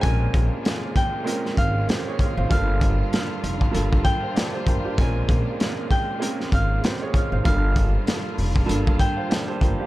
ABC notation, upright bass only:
X:1
M:4/4
L:1/16
Q:"Swing 16ths" 1/4=97
K:Gm
V:1 name="Upright bass" clef=bass
B,,,2 B,,, z6 z _A,,,2 z3 A,,, | G,,,4 z2 F,,,2 G,,,2 z4 G,,, z | B,,,2 B,,, z6 z _A,,,2 z3 A,,, | G,,,4 z2 F,,,2 G,,,2 z4 G,,, z |]